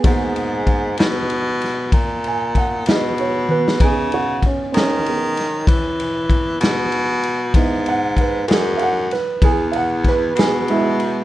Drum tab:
RD |x-x-x-x-x-x-x-x-x-x-x---|x-x-x-x-x-x-x-x-x-x-x-x-|x-x-x-x-x-x-x-x-x-x-x-x-|
SD |------o---o-------o----o|------o---o-------o-----|------o---o-----o-o-----|
T1 |----------------------o-|------------------------|------------------------|
BD |o---o-------o---o-------|o---o-------o---o-------|o---o-------o---o-------|